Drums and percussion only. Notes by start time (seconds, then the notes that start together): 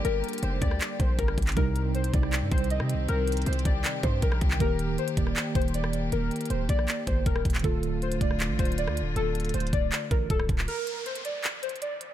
0.05 closed hi-hat
0.24 closed hi-hat
0.29 closed hi-hat
0.33 closed hi-hat
0.38 closed hi-hat
0.43 closed hi-hat
0.62 kick, closed hi-hat
0.71 cross-stick
0.81 clap, closed hi-hat
1.00 kick, closed hi-hat
1.19 kick, closed hi-hat
1.28 cross-stick
1.38 kick, closed hi-hat
1.42 closed hi-hat
1.47 clap, closed hi-hat
1.52 closed hi-hat
1.57 kick, closed hi-hat
1.76 closed hi-hat
1.95 closed hi-hat
2.04 closed hi-hat
2.14 kick, closed hi-hat
2.23 cross-stick
2.33 clap, closed hi-hat
2.52 kick, closed hi-hat
2.58 closed hi-hat
2.64 closed hi-hat
2.70 closed hi-hat
2.80 cross-stick
2.89 closed hi-hat
3.09 closed hi-hat
3.27 closed hi-hat, open hi-hat
3.32 closed hi-hat
3.37 closed hi-hat
3.42 closed hi-hat
3.46 closed hi-hat
3.53 closed hi-hat
3.59 closed hi-hat
3.65 kick, closed hi-hat
3.84 clap, closed hi-hat
4.03 kick, closed hi-hat
4.22 kick, closed hi-hat
4.32 cross-stick
4.41 kick, closed hi-hat
4.51 clap
4.60 kick, closed hi-hat
4.79 closed hi-hat
4.98 closed hi-hat
5.08 closed hi-hat
5.17 kick, closed hi-hat
5.27 cross-stick
5.36 clap, closed hi-hat
5.55 kick, closed hi-hat
5.62 closed hi-hat
5.68 closed hi-hat
5.74 closed hi-hat
5.84 cross-stick
5.93 closed hi-hat
6.12 closed hi-hat
6.31 closed hi-hat
6.36 closed hi-hat
6.41 closed hi-hat
6.45 closed hi-hat
6.50 closed hi-hat
6.69 kick, closed hi-hat
6.79 cross-stick
6.88 clap, closed hi-hat
7.07 kick, closed hi-hat
7.26 kick, closed hi-hat
7.36 cross-stick
7.45 kick, closed hi-hat
7.50 closed hi-hat
7.55 clap, closed hi-hat
7.59 closed hi-hat
7.64 kick, closed hi-hat
7.83 closed hi-hat
8.02 closed hi-hat
8.12 closed hi-hat
8.21 kick, closed hi-hat
8.31 cross-stick
8.40 clap, closed hi-hat
8.59 kick, closed hi-hat
8.65 closed hi-hat
8.72 closed hi-hat
8.78 closed hi-hat
8.88 cross-stick
8.97 closed hi-hat
9.16 closed hi-hat
9.35 closed hi-hat, open hi-hat
9.40 closed hi-hat
9.45 closed hi-hat
9.49 closed hi-hat
9.54 closed hi-hat
9.60 closed hi-hat
9.67 closed hi-hat
9.73 kick, closed hi-hat
9.92 clap, closed hi-hat
10.11 kick, closed hi-hat
10.30 kick, closed hi-hat
10.40 cross-stick
10.49 kick, closed hi-hat
10.59 clap
10.68 closed hi-hat
10.87 closed hi-hat
11.06 closed hi-hat
11.15 closed hi-hat
11.25 closed hi-hat
11.44 clap, closed hi-hat
11.63 closed hi-hat
11.69 closed hi-hat
11.76 closed hi-hat
11.82 closed hi-hat
12.01 closed hi-hat